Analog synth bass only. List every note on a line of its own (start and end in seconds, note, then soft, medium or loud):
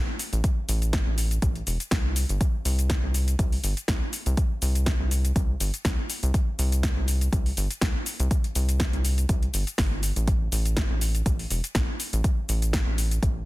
0.33 0.41 A1 loud
0.69 1.02 A1 loud
1.07 1.38 A1 medium
1.42 1.62 A1 medium
1.67 1.77 E1 medium
1.91 2.25 C2 loud
2.29 2.38 G1 medium
2.65 2.98 C2 loud
3.03 3.35 C2 medium
3.39 3.59 C2 medium
3.64 3.74 G1 medium
3.88 3.99 C2 medium
4.26 4.35 C2 loud
4.62 4.95 C2 loud
5.00 5.32 C2 medium
5.36 5.55 C2 medium
5.60 5.71 G1 medium
5.85 5.95 C2 loud
6.23 6.32 C2 loud
6.59 6.92 C2 loud
6.97 7.29 C2 medium
7.33 7.52 C2 medium
7.57 7.68 G1 loud
7.82 7.92 C2 medium
8.20 8.28 C2 loud
8.55 8.89 C2 loud
8.93 9.25 C2 medium
9.29 9.49 C2 medium
9.54 9.64 G1 medium
9.78 10.12 G1 medium
10.16 10.48 A1 medium
10.52 10.85 A1 loud
10.90 11.22 A1 medium
11.26 11.46 A1 medium
11.51 11.61 E1 loud
11.75 11.86 A1 loud
12.13 12.22 A1 loud
12.49 12.82 A1 loud
12.87 13.19 A1 medium
13.23 13.42 A1 medium